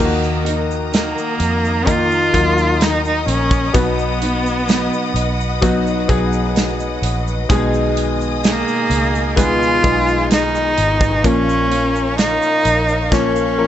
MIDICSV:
0, 0, Header, 1, 7, 480
1, 0, Start_track
1, 0, Time_signature, 4, 2, 24, 8
1, 0, Key_signature, -6, "minor"
1, 0, Tempo, 937500
1, 6999, End_track
2, 0, Start_track
2, 0, Title_t, "String section"
2, 0, Program_c, 0, 48
2, 0, Note_on_c, 0, 75, 75
2, 0, Note_on_c, 0, 82, 78
2, 0, Note_on_c, 0, 87, 93
2, 1, Note_on_c, 0, 70, 77
2, 1899, Note_off_c, 0, 82, 0
2, 1901, Note_off_c, 0, 70, 0
2, 1912, Note_on_c, 0, 78, 72
2, 1913, Note_on_c, 0, 71, 74
2, 3816, Note_off_c, 0, 71, 0
2, 3816, Note_off_c, 0, 78, 0
2, 3819, Note_off_c, 0, 87, 0
2, 3841, Note_on_c, 0, 80, 79
2, 3841, Note_on_c, 0, 87, 93
2, 3842, Note_on_c, 0, 68, 87
2, 4790, Note_off_c, 0, 87, 0
2, 4799, Note_on_c, 0, 85, 83
2, 5739, Note_off_c, 0, 75, 0
2, 5741, Note_off_c, 0, 68, 0
2, 5741, Note_off_c, 0, 80, 0
2, 5752, Note_on_c, 0, 73, 77
2, 5753, Note_on_c, 0, 77, 75
2, 5755, Note_on_c, 0, 70, 82
2, 6999, Note_off_c, 0, 70, 0
2, 6999, Note_off_c, 0, 73, 0
2, 6999, Note_off_c, 0, 77, 0
2, 6999, Note_off_c, 0, 85, 0
2, 6999, End_track
3, 0, Start_track
3, 0, Title_t, "Cello"
3, 0, Program_c, 1, 42
3, 489, Note_on_c, 1, 58, 100
3, 968, Note_on_c, 1, 65, 107
3, 976, Note_off_c, 1, 58, 0
3, 1447, Note_on_c, 1, 63, 98
3, 1455, Note_off_c, 1, 65, 0
3, 1563, Note_off_c, 1, 63, 0
3, 1568, Note_on_c, 1, 63, 89
3, 1675, Note_off_c, 1, 63, 0
3, 1684, Note_on_c, 1, 61, 92
3, 1926, Note_on_c, 1, 59, 94
3, 1933, Note_off_c, 1, 61, 0
3, 2882, Note_off_c, 1, 59, 0
3, 4334, Note_on_c, 1, 58, 102
3, 4786, Note_off_c, 1, 58, 0
3, 4809, Note_on_c, 1, 65, 113
3, 5263, Note_off_c, 1, 65, 0
3, 5287, Note_on_c, 1, 63, 100
3, 5765, Note_on_c, 1, 61, 101
3, 5773, Note_off_c, 1, 63, 0
3, 6242, Note_off_c, 1, 61, 0
3, 6244, Note_on_c, 1, 63, 118
3, 6724, Note_on_c, 1, 61, 90
3, 6731, Note_off_c, 1, 63, 0
3, 6999, Note_off_c, 1, 61, 0
3, 6999, End_track
4, 0, Start_track
4, 0, Title_t, "Grand piano"
4, 0, Program_c, 2, 0
4, 0, Control_c, 2, 64, 127
4, 0, Note_on_c, 2, 51, 73
4, 0, Note_on_c, 2, 58, 77
4, 0, Note_on_c, 2, 63, 74
4, 0, Note_on_c, 2, 70, 90
4, 6, Control_c, 2, 64, 0
4, 24, Note_on_c, 2, 66, 85
4, 87, Control_c, 2, 64, 127
4, 695, Note_off_c, 2, 51, 0
4, 908, Note_off_c, 2, 58, 0
4, 908, Note_off_c, 2, 70, 0
4, 909, Note_off_c, 2, 63, 0
4, 923, Note_off_c, 2, 66, 0
4, 952, Note_on_c, 2, 51, 75
4, 954, Note_on_c, 2, 58, 70
4, 956, Note_on_c, 2, 63, 64
4, 958, Note_on_c, 2, 70, 81
4, 1183, Note_off_c, 2, 51, 0
4, 1184, Note_off_c, 2, 58, 0
4, 1185, Note_off_c, 2, 63, 0
4, 1186, Note_off_c, 2, 70, 0
4, 1193, Note_on_c, 2, 54, 62
4, 1193, Note_on_c, 2, 58, 59
4, 1195, Note_on_c, 2, 70, 72
4, 1196, Note_on_c, 2, 63, 60
4, 1880, Note_off_c, 2, 54, 0
4, 1880, Note_off_c, 2, 58, 0
4, 1881, Note_off_c, 2, 63, 0
4, 1881, Note_off_c, 2, 70, 0
4, 1912, Note_on_c, 2, 59, 68
4, 1913, Note_on_c, 2, 54, 76
4, 1914, Note_on_c, 2, 47, 60
4, 1915, Note_on_c, 2, 63, 62
4, 1916, Note_on_c, 2, 71, 81
4, 1926, Control_c, 2, 64, 0
4, 2020, Control_c, 2, 64, 127
4, 2616, Note_off_c, 2, 47, 0
4, 2827, Note_off_c, 2, 59, 0
4, 2828, Note_off_c, 2, 54, 0
4, 2829, Note_off_c, 2, 63, 0
4, 2829, Note_off_c, 2, 71, 0
4, 2875, Note_on_c, 2, 54, 89
4, 2877, Note_on_c, 2, 59, 83
4, 2877, Note_on_c, 2, 63, 81
4, 2880, Note_on_c, 2, 66, 88
4, 3105, Note_off_c, 2, 54, 0
4, 3106, Note_off_c, 2, 59, 0
4, 3106, Note_off_c, 2, 63, 0
4, 3107, Note_off_c, 2, 66, 0
4, 3114, Note_on_c, 2, 54, 83
4, 3115, Note_on_c, 2, 59, 68
4, 3117, Note_on_c, 2, 63, 72
4, 3117, Note_on_c, 2, 68, 89
4, 3800, Note_off_c, 2, 54, 0
4, 3801, Note_off_c, 2, 59, 0
4, 3802, Note_off_c, 2, 63, 0
4, 3802, Note_off_c, 2, 68, 0
4, 3835, Note_on_c, 2, 56, 93
4, 3837, Note_on_c, 2, 47, 76
4, 3838, Note_on_c, 2, 63, 73
4, 3840, Note_on_c, 2, 68, 95
4, 3844, Control_c, 2, 64, 0
4, 3934, Control_c, 2, 64, 127
4, 4537, Note_off_c, 2, 47, 0
4, 4749, Note_off_c, 2, 56, 0
4, 4750, Note_off_c, 2, 63, 0
4, 4751, Note_off_c, 2, 68, 0
4, 4792, Note_on_c, 2, 56, 79
4, 4794, Note_on_c, 2, 59, 68
4, 4795, Note_on_c, 2, 63, 75
4, 4798, Note_on_c, 2, 71, 81
4, 5023, Note_off_c, 2, 56, 0
4, 5024, Note_off_c, 2, 59, 0
4, 5025, Note_off_c, 2, 63, 0
4, 5026, Note_off_c, 2, 71, 0
4, 5033, Note_on_c, 2, 56, 75
4, 5035, Note_on_c, 2, 59, 63
4, 5036, Note_on_c, 2, 63, 63
4, 5038, Note_on_c, 2, 65, 77
4, 5720, Note_off_c, 2, 56, 0
4, 5721, Note_off_c, 2, 59, 0
4, 5721, Note_off_c, 2, 63, 0
4, 5722, Note_off_c, 2, 65, 0
4, 5754, Note_on_c, 2, 53, 73
4, 5755, Note_on_c, 2, 58, 68
4, 5756, Note_on_c, 2, 46, 65
4, 5758, Note_on_c, 2, 61, 65
4, 5758, Note_on_c, 2, 70, 80
4, 5764, Control_c, 2, 64, 0
4, 5854, Control_c, 2, 64, 127
4, 6457, Note_off_c, 2, 46, 0
4, 6668, Note_off_c, 2, 53, 0
4, 6669, Note_off_c, 2, 58, 0
4, 6670, Note_off_c, 2, 61, 0
4, 6670, Note_off_c, 2, 70, 0
4, 6714, Note_on_c, 2, 53, 78
4, 6715, Note_on_c, 2, 58, 72
4, 6717, Note_on_c, 2, 61, 62
4, 6718, Note_on_c, 2, 73, 78
4, 6944, Note_off_c, 2, 53, 0
4, 6945, Note_off_c, 2, 58, 0
4, 6946, Note_off_c, 2, 61, 0
4, 6946, Note_off_c, 2, 73, 0
4, 6954, Note_on_c, 2, 53, 65
4, 6954, Note_on_c, 2, 58, 61
4, 6955, Note_on_c, 2, 61, 55
4, 6956, Note_on_c, 2, 70, 77
4, 6999, Note_off_c, 2, 53, 0
4, 6999, Note_off_c, 2, 58, 0
4, 6999, Note_off_c, 2, 61, 0
4, 6999, Note_off_c, 2, 70, 0
4, 6999, End_track
5, 0, Start_track
5, 0, Title_t, "Nylon-string guitar"
5, 0, Program_c, 3, 24
5, 0, Note_on_c, 3, 51, 77
5, 0, Note_on_c, 3, 58, 83
5, 1, Note_on_c, 3, 63, 93
5, 3, Note_on_c, 3, 66, 93
5, 223, Note_off_c, 3, 66, 0
5, 229, Note_on_c, 3, 66, 59
5, 232, Note_off_c, 3, 63, 0
5, 236, Note_off_c, 3, 51, 0
5, 237, Note_off_c, 3, 58, 0
5, 238, Note_on_c, 3, 63, 54
5, 244, Note_on_c, 3, 58, 49
5, 471, Note_off_c, 3, 58, 0
5, 471, Note_on_c, 3, 51, 61
5, 474, Note_off_c, 3, 66, 0
5, 475, Note_off_c, 3, 63, 0
5, 477, Note_on_c, 3, 58, 57
5, 481, Note_on_c, 3, 63, 59
5, 486, Note_on_c, 3, 66, 60
5, 946, Note_off_c, 3, 51, 0
5, 948, Note_on_c, 3, 51, 73
5, 951, Note_off_c, 3, 58, 0
5, 957, Note_on_c, 3, 58, 73
5, 962, Note_off_c, 3, 63, 0
5, 964, Note_on_c, 3, 63, 82
5, 1914, Note_on_c, 3, 47, 73
5, 1915, Note_off_c, 3, 51, 0
5, 1917, Note_off_c, 3, 58, 0
5, 1917, Note_on_c, 3, 54, 67
5, 1919, Note_on_c, 3, 59, 82
5, 1920, Note_off_c, 3, 63, 0
5, 1920, Note_off_c, 3, 66, 0
5, 1922, Note_on_c, 3, 63, 73
5, 1922, Note_on_c, 3, 66, 90
5, 2146, Note_off_c, 3, 66, 0
5, 2152, Note_on_c, 3, 66, 47
5, 2154, Note_off_c, 3, 63, 0
5, 2156, Note_off_c, 3, 47, 0
5, 2158, Note_off_c, 3, 54, 0
5, 2159, Note_off_c, 3, 59, 0
5, 2160, Note_on_c, 3, 63, 53
5, 2165, Note_on_c, 3, 59, 44
5, 2393, Note_off_c, 3, 59, 0
5, 2393, Note_on_c, 3, 54, 60
5, 2395, Note_off_c, 3, 66, 0
5, 2396, Note_off_c, 3, 63, 0
5, 2399, Note_on_c, 3, 59, 56
5, 2402, Note_on_c, 3, 63, 67
5, 2407, Note_on_c, 3, 66, 66
5, 2868, Note_off_c, 3, 54, 0
5, 2874, Note_on_c, 3, 54, 90
5, 2878, Note_off_c, 3, 59, 0
5, 2880, Note_on_c, 3, 59, 97
5, 2883, Note_off_c, 3, 63, 0
5, 2883, Note_off_c, 3, 66, 0
5, 2885, Note_on_c, 3, 63, 91
5, 2891, Note_on_c, 3, 66, 87
5, 3836, Note_off_c, 3, 54, 0
5, 3836, Note_on_c, 3, 47, 87
5, 3839, Note_off_c, 3, 59, 0
5, 3840, Note_on_c, 3, 51, 89
5, 3841, Note_off_c, 3, 63, 0
5, 3841, Note_on_c, 3, 56, 84
5, 3843, Note_on_c, 3, 59, 89
5, 3844, Note_off_c, 3, 66, 0
5, 3846, Note_on_c, 3, 68, 94
5, 4309, Note_off_c, 3, 51, 0
5, 4314, Note_off_c, 3, 56, 0
5, 4315, Note_on_c, 3, 51, 62
5, 4317, Note_off_c, 3, 47, 0
5, 4320, Note_on_c, 3, 56, 59
5, 4321, Note_off_c, 3, 59, 0
5, 4322, Note_off_c, 3, 68, 0
5, 4328, Note_on_c, 3, 68, 60
5, 4792, Note_off_c, 3, 51, 0
5, 4793, Note_on_c, 3, 47, 77
5, 4798, Note_off_c, 3, 56, 0
5, 4799, Note_on_c, 3, 51, 73
5, 4803, Note_off_c, 3, 68, 0
5, 4804, Note_on_c, 3, 56, 81
5, 4809, Note_on_c, 3, 59, 79
5, 4814, Note_on_c, 3, 68, 84
5, 5754, Note_off_c, 3, 47, 0
5, 5756, Note_off_c, 3, 51, 0
5, 5756, Note_on_c, 3, 46, 71
5, 5758, Note_off_c, 3, 56, 0
5, 5758, Note_on_c, 3, 53, 71
5, 5760, Note_on_c, 3, 58, 73
5, 5761, Note_off_c, 3, 59, 0
5, 5763, Note_off_c, 3, 68, 0
5, 5764, Note_on_c, 3, 61, 86
5, 5765, Note_on_c, 3, 65, 85
5, 5987, Note_off_c, 3, 65, 0
5, 5993, Note_on_c, 3, 65, 57
5, 5996, Note_off_c, 3, 61, 0
5, 5997, Note_off_c, 3, 46, 0
5, 5998, Note_off_c, 3, 53, 0
5, 5999, Note_off_c, 3, 58, 0
5, 6003, Note_on_c, 3, 61, 51
5, 6008, Note_on_c, 3, 58, 46
5, 6711, Note_on_c, 3, 46, 72
5, 6716, Note_off_c, 3, 65, 0
5, 6716, Note_on_c, 3, 53, 75
5, 6721, Note_off_c, 3, 58, 0
5, 6721, Note_off_c, 3, 61, 0
5, 6723, Note_on_c, 3, 58, 86
5, 6728, Note_on_c, 3, 61, 80
5, 6732, Note_on_c, 3, 65, 81
5, 6999, Note_off_c, 3, 46, 0
5, 6999, Note_off_c, 3, 53, 0
5, 6999, Note_off_c, 3, 58, 0
5, 6999, Note_off_c, 3, 61, 0
5, 6999, Note_off_c, 3, 65, 0
5, 6999, End_track
6, 0, Start_track
6, 0, Title_t, "Fingered electric bass"
6, 0, Program_c, 4, 33
6, 0, Note_on_c, 4, 39, 98
6, 577, Note_off_c, 4, 39, 0
6, 716, Note_on_c, 4, 41, 87
6, 1177, Note_off_c, 4, 41, 0
6, 1198, Note_on_c, 4, 39, 103
6, 1658, Note_off_c, 4, 39, 0
6, 1673, Note_on_c, 4, 34, 94
6, 1899, Note_off_c, 4, 34, 0
6, 1918, Note_on_c, 4, 35, 104
6, 2498, Note_off_c, 4, 35, 0
6, 2633, Note_on_c, 4, 35, 88
6, 3095, Note_off_c, 4, 35, 0
6, 3120, Note_on_c, 4, 35, 90
6, 3579, Note_off_c, 4, 35, 0
6, 3596, Note_on_c, 4, 34, 94
6, 3820, Note_off_c, 4, 34, 0
6, 3840, Note_on_c, 4, 35, 111
6, 4419, Note_off_c, 4, 35, 0
6, 4556, Note_on_c, 4, 37, 80
6, 5017, Note_off_c, 4, 37, 0
6, 5038, Note_on_c, 4, 35, 89
6, 5498, Note_off_c, 4, 35, 0
6, 5520, Note_on_c, 4, 32, 91
6, 5742, Note_off_c, 4, 32, 0
6, 5756, Note_on_c, 4, 34, 108
6, 6337, Note_off_c, 4, 34, 0
6, 6478, Note_on_c, 4, 34, 85
6, 6999, Note_off_c, 4, 34, 0
6, 6999, End_track
7, 0, Start_track
7, 0, Title_t, "Drums"
7, 0, Note_on_c, 9, 82, 63
7, 49, Note_off_c, 9, 82, 0
7, 121, Note_on_c, 9, 82, 48
7, 172, Note_off_c, 9, 82, 0
7, 237, Note_on_c, 9, 42, 77
7, 288, Note_off_c, 9, 42, 0
7, 364, Note_on_c, 9, 82, 47
7, 416, Note_off_c, 9, 82, 0
7, 478, Note_on_c, 9, 82, 69
7, 480, Note_on_c, 9, 42, 86
7, 485, Note_on_c, 9, 38, 100
7, 529, Note_off_c, 9, 82, 0
7, 531, Note_off_c, 9, 42, 0
7, 536, Note_off_c, 9, 38, 0
7, 604, Note_on_c, 9, 82, 48
7, 656, Note_off_c, 9, 82, 0
7, 716, Note_on_c, 9, 42, 82
7, 726, Note_on_c, 9, 82, 52
7, 767, Note_off_c, 9, 42, 0
7, 777, Note_off_c, 9, 82, 0
7, 845, Note_on_c, 9, 82, 45
7, 896, Note_off_c, 9, 82, 0
7, 959, Note_on_c, 9, 36, 88
7, 959, Note_on_c, 9, 42, 79
7, 967, Note_on_c, 9, 82, 71
7, 1010, Note_off_c, 9, 36, 0
7, 1011, Note_off_c, 9, 42, 0
7, 1018, Note_off_c, 9, 82, 0
7, 1082, Note_on_c, 9, 82, 45
7, 1133, Note_off_c, 9, 82, 0
7, 1199, Note_on_c, 9, 36, 84
7, 1201, Note_on_c, 9, 42, 71
7, 1250, Note_off_c, 9, 36, 0
7, 1252, Note_off_c, 9, 42, 0
7, 1320, Note_on_c, 9, 82, 45
7, 1371, Note_off_c, 9, 82, 0
7, 1439, Note_on_c, 9, 42, 87
7, 1443, Note_on_c, 9, 82, 65
7, 1445, Note_on_c, 9, 38, 114
7, 1490, Note_off_c, 9, 42, 0
7, 1494, Note_off_c, 9, 82, 0
7, 1496, Note_off_c, 9, 38, 0
7, 1562, Note_on_c, 9, 82, 42
7, 1613, Note_off_c, 9, 82, 0
7, 1680, Note_on_c, 9, 42, 89
7, 1731, Note_off_c, 9, 42, 0
7, 1797, Note_on_c, 9, 36, 102
7, 1803, Note_on_c, 9, 82, 52
7, 1848, Note_off_c, 9, 36, 0
7, 1854, Note_off_c, 9, 82, 0
7, 1917, Note_on_c, 9, 36, 109
7, 1917, Note_on_c, 9, 42, 86
7, 1920, Note_on_c, 9, 82, 73
7, 1968, Note_off_c, 9, 42, 0
7, 1969, Note_off_c, 9, 36, 0
7, 1971, Note_off_c, 9, 82, 0
7, 2041, Note_on_c, 9, 82, 42
7, 2092, Note_off_c, 9, 82, 0
7, 2160, Note_on_c, 9, 42, 81
7, 2211, Note_off_c, 9, 42, 0
7, 2284, Note_on_c, 9, 82, 52
7, 2335, Note_off_c, 9, 82, 0
7, 2399, Note_on_c, 9, 82, 70
7, 2402, Note_on_c, 9, 42, 83
7, 2406, Note_on_c, 9, 38, 105
7, 2450, Note_off_c, 9, 82, 0
7, 2453, Note_off_c, 9, 42, 0
7, 2457, Note_off_c, 9, 38, 0
7, 2526, Note_on_c, 9, 82, 47
7, 2577, Note_off_c, 9, 82, 0
7, 2642, Note_on_c, 9, 42, 81
7, 2645, Note_on_c, 9, 82, 49
7, 2693, Note_off_c, 9, 42, 0
7, 2696, Note_off_c, 9, 82, 0
7, 2767, Note_on_c, 9, 82, 42
7, 2818, Note_off_c, 9, 82, 0
7, 2879, Note_on_c, 9, 42, 80
7, 2880, Note_on_c, 9, 36, 92
7, 2885, Note_on_c, 9, 82, 64
7, 2930, Note_off_c, 9, 42, 0
7, 2931, Note_off_c, 9, 36, 0
7, 2937, Note_off_c, 9, 82, 0
7, 3004, Note_on_c, 9, 82, 47
7, 3056, Note_off_c, 9, 82, 0
7, 3119, Note_on_c, 9, 36, 88
7, 3120, Note_on_c, 9, 42, 74
7, 3170, Note_off_c, 9, 36, 0
7, 3171, Note_off_c, 9, 42, 0
7, 3239, Note_on_c, 9, 82, 51
7, 3290, Note_off_c, 9, 82, 0
7, 3360, Note_on_c, 9, 42, 77
7, 3361, Note_on_c, 9, 82, 65
7, 3366, Note_on_c, 9, 38, 113
7, 3411, Note_off_c, 9, 42, 0
7, 3412, Note_off_c, 9, 82, 0
7, 3417, Note_off_c, 9, 38, 0
7, 3482, Note_on_c, 9, 82, 40
7, 3533, Note_off_c, 9, 82, 0
7, 3601, Note_on_c, 9, 42, 100
7, 3652, Note_off_c, 9, 42, 0
7, 3725, Note_on_c, 9, 82, 50
7, 3776, Note_off_c, 9, 82, 0
7, 3839, Note_on_c, 9, 36, 120
7, 3840, Note_on_c, 9, 42, 84
7, 3842, Note_on_c, 9, 82, 74
7, 3890, Note_off_c, 9, 36, 0
7, 3891, Note_off_c, 9, 42, 0
7, 3894, Note_off_c, 9, 82, 0
7, 3963, Note_on_c, 9, 82, 50
7, 4014, Note_off_c, 9, 82, 0
7, 4081, Note_on_c, 9, 42, 82
7, 4132, Note_off_c, 9, 42, 0
7, 4205, Note_on_c, 9, 82, 49
7, 4257, Note_off_c, 9, 82, 0
7, 4320, Note_on_c, 9, 82, 73
7, 4323, Note_on_c, 9, 42, 86
7, 4327, Note_on_c, 9, 38, 105
7, 4371, Note_off_c, 9, 82, 0
7, 4374, Note_off_c, 9, 42, 0
7, 4379, Note_off_c, 9, 38, 0
7, 4444, Note_on_c, 9, 82, 50
7, 4496, Note_off_c, 9, 82, 0
7, 4560, Note_on_c, 9, 42, 80
7, 4566, Note_on_c, 9, 82, 48
7, 4611, Note_off_c, 9, 42, 0
7, 4617, Note_off_c, 9, 82, 0
7, 4686, Note_on_c, 9, 82, 42
7, 4737, Note_off_c, 9, 82, 0
7, 4799, Note_on_c, 9, 36, 82
7, 4799, Note_on_c, 9, 42, 81
7, 4808, Note_on_c, 9, 82, 75
7, 4850, Note_off_c, 9, 36, 0
7, 4850, Note_off_c, 9, 42, 0
7, 4859, Note_off_c, 9, 82, 0
7, 4928, Note_on_c, 9, 82, 50
7, 4979, Note_off_c, 9, 82, 0
7, 5038, Note_on_c, 9, 36, 94
7, 5040, Note_on_c, 9, 42, 73
7, 5089, Note_off_c, 9, 36, 0
7, 5091, Note_off_c, 9, 42, 0
7, 5161, Note_on_c, 9, 82, 50
7, 5212, Note_off_c, 9, 82, 0
7, 5278, Note_on_c, 9, 42, 89
7, 5284, Note_on_c, 9, 38, 121
7, 5284, Note_on_c, 9, 82, 67
7, 5329, Note_off_c, 9, 42, 0
7, 5335, Note_off_c, 9, 38, 0
7, 5335, Note_off_c, 9, 82, 0
7, 5402, Note_on_c, 9, 82, 47
7, 5453, Note_off_c, 9, 82, 0
7, 5518, Note_on_c, 9, 42, 89
7, 5569, Note_off_c, 9, 42, 0
7, 5636, Note_on_c, 9, 36, 104
7, 5647, Note_on_c, 9, 82, 54
7, 5687, Note_off_c, 9, 36, 0
7, 5698, Note_off_c, 9, 82, 0
7, 5757, Note_on_c, 9, 36, 112
7, 5757, Note_on_c, 9, 42, 82
7, 5759, Note_on_c, 9, 82, 70
7, 5808, Note_off_c, 9, 36, 0
7, 5808, Note_off_c, 9, 42, 0
7, 5810, Note_off_c, 9, 82, 0
7, 5884, Note_on_c, 9, 82, 50
7, 5935, Note_off_c, 9, 82, 0
7, 5998, Note_on_c, 9, 42, 77
7, 6050, Note_off_c, 9, 42, 0
7, 6121, Note_on_c, 9, 82, 51
7, 6173, Note_off_c, 9, 82, 0
7, 6237, Note_on_c, 9, 42, 83
7, 6239, Note_on_c, 9, 82, 78
7, 6242, Note_on_c, 9, 38, 95
7, 6288, Note_off_c, 9, 42, 0
7, 6290, Note_off_c, 9, 82, 0
7, 6293, Note_off_c, 9, 38, 0
7, 6360, Note_on_c, 9, 82, 50
7, 6411, Note_off_c, 9, 82, 0
7, 6477, Note_on_c, 9, 42, 76
7, 6484, Note_on_c, 9, 82, 49
7, 6528, Note_off_c, 9, 42, 0
7, 6535, Note_off_c, 9, 82, 0
7, 6598, Note_on_c, 9, 82, 45
7, 6649, Note_off_c, 9, 82, 0
7, 6717, Note_on_c, 9, 36, 89
7, 6721, Note_on_c, 9, 82, 72
7, 6723, Note_on_c, 9, 38, 57
7, 6768, Note_off_c, 9, 36, 0
7, 6772, Note_off_c, 9, 82, 0
7, 6774, Note_off_c, 9, 38, 0
7, 6840, Note_on_c, 9, 82, 50
7, 6891, Note_off_c, 9, 82, 0
7, 6999, End_track
0, 0, End_of_file